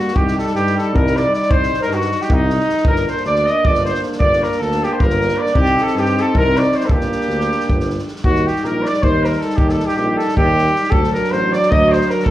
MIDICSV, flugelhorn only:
0, 0, Header, 1, 2, 480
1, 0, Start_track
1, 0, Key_signature, -2, "minor"
1, 0, Tempo, 383877
1, 195, Time_signature, 7, 3, 24, 8
1, 15386, End_track
2, 0, Start_track
2, 0, Title_t, "Flugelhorn"
2, 0, Program_c, 0, 56
2, 0, Note_on_c, 0, 66, 96
2, 190, Note_on_c, 0, 67, 92
2, 209, Note_off_c, 0, 66, 0
2, 466, Note_off_c, 0, 67, 0
2, 477, Note_on_c, 0, 69, 82
2, 682, Note_off_c, 0, 69, 0
2, 690, Note_on_c, 0, 67, 101
2, 945, Note_off_c, 0, 67, 0
2, 967, Note_on_c, 0, 69, 88
2, 1190, Note_on_c, 0, 70, 105
2, 1209, Note_off_c, 0, 69, 0
2, 1458, Note_on_c, 0, 74, 94
2, 1476, Note_off_c, 0, 70, 0
2, 1667, Note_off_c, 0, 74, 0
2, 1681, Note_on_c, 0, 74, 102
2, 1885, Note_on_c, 0, 72, 115
2, 1903, Note_off_c, 0, 74, 0
2, 2267, Note_off_c, 0, 72, 0
2, 2281, Note_on_c, 0, 70, 94
2, 2423, Note_on_c, 0, 66, 96
2, 2441, Note_off_c, 0, 70, 0
2, 2775, Note_on_c, 0, 67, 89
2, 2793, Note_off_c, 0, 66, 0
2, 2913, Note_on_c, 0, 63, 111
2, 2931, Note_off_c, 0, 67, 0
2, 3580, Note_off_c, 0, 63, 0
2, 3585, Note_on_c, 0, 70, 99
2, 3828, Note_off_c, 0, 70, 0
2, 3888, Note_on_c, 0, 72, 77
2, 4070, Note_off_c, 0, 72, 0
2, 4077, Note_on_c, 0, 74, 105
2, 4387, Note_on_c, 0, 75, 103
2, 4406, Note_off_c, 0, 74, 0
2, 4585, Note_on_c, 0, 74, 113
2, 4604, Note_off_c, 0, 75, 0
2, 4798, Note_off_c, 0, 74, 0
2, 4806, Note_on_c, 0, 72, 91
2, 5011, Note_off_c, 0, 72, 0
2, 5242, Note_on_c, 0, 74, 109
2, 5543, Note_on_c, 0, 70, 91
2, 5562, Note_off_c, 0, 74, 0
2, 5773, Note_on_c, 0, 69, 92
2, 5792, Note_off_c, 0, 70, 0
2, 6056, Note_on_c, 0, 67, 94
2, 6075, Note_off_c, 0, 69, 0
2, 6167, Note_on_c, 0, 72, 76
2, 6186, Note_off_c, 0, 67, 0
2, 6301, Note_on_c, 0, 70, 108
2, 6320, Note_off_c, 0, 72, 0
2, 6752, Note_on_c, 0, 74, 94
2, 6771, Note_off_c, 0, 70, 0
2, 6952, Note_off_c, 0, 74, 0
2, 7002, Note_on_c, 0, 67, 112
2, 7281, Note_on_c, 0, 69, 95
2, 7300, Note_off_c, 0, 67, 0
2, 7493, Note_on_c, 0, 67, 103
2, 7512, Note_off_c, 0, 69, 0
2, 7763, Note_on_c, 0, 69, 100
2, 7782, Note_off_c, 0, 67, 0
2, 7976, Note_on_c, 0, 70, 115
2, 7995, Note_off_c, 0, 69, 0
2, 8223, Note_on_c, 0, 74, 99
2, 8242, Note_off_c, 0, 70, 0
2, 8458, Note_on_c, 0, 72, 87
2, 8477, Note_off_c, 0, 74, 0
2, 8579, Note_on_c, 0, 69, 70
2, 8598, Note_off_c, 0, 72, 0
2, 8661, Note_on_c, 0, 67, 85
2, 8680, Note_off_c, 0, 69, 0
2, 10102, Note_off_c, 0, 67, 0
2, 10311, Note_on_c, 0, 66, 110
2, 10591, Note_on_c, 0, 67, 82
2, 10610, Note_off_c, 0, 66, 0
2, 10806, Note_on_c, 0, 70, 89
2, 10825, Note_off_c, 0, 67, 0
2, 11044, Note_on_c, 0, 74, 89
2, 11063, Note_off_c, 0, 70, 0
2, 11286, Note_on_c, 0, 72, 105
2, 11304, Note_off_c, 0, 74, 0
2, 11567, Note_on_c, 0, 70, 86
2, 11586, Note_off_c, 0, 72, 0
2, 11770, Note_off_c, 0, 70, 0
2, 11785, Note_on_c, 0, 69, 81
2, 11963, Note_on_c, 0, 67, 99
2, 11982, Note_off_c, 0, 69, 0
2, 12119, Note_on_c, 0, 69, 79
2, 12138, Note_off_c, 0, 67, 0
2, 12331, Note_on_c, 0, 67, 101
2, 12349, Note_off_c, 0, 69, 0
2, 12451, Note_off_c, 0, 67, 0
2, 12458, Note_on_c, 0, 67, 97
2, 12719, Note_on_c, 0, 69, 94
2, 12738, Note_off_c, 0, 67, 0
2, 12952, Note_off_c, 0, 69, 0
2, 12963, Note_on_c, 0, 67, 119
2, 13640, Note_on_c, 0, 69, 103
2, 13658, Note_off_c, 0, 67, 0
2, 13913, Note_off_c, 0, 69, 0
2, 13926, Note_on_c, 0, 70, 90
2, 14148, Note_on_c, 0, 72, 98
2, 14166, Note_off_c, 0, 70, 0
2, 14425, Note_on_c, 0, 74, 105
2, 14444, Note_off_c, 0, 72, 0
2, 14648, Note_on_c, 0, 75, 117
2, 14667, Note_off_c, 0, 74, 0
2, 14912, Note_on_c, 0, 72, 100
2, 14931, Note_off_c, 0, 75, 0
2, 15137, Note_on_c, 0, 70, 84
2, 15155, Note_off_c, 0, 72, 0
2, 15326, Note_off_c, 0, 70, 0
2, 15334, Note_on_c, 0, 69, 110
2, 15386, Note_off_c, 0, 69, 0
2, 15386, End_track
0, 0, End_of_file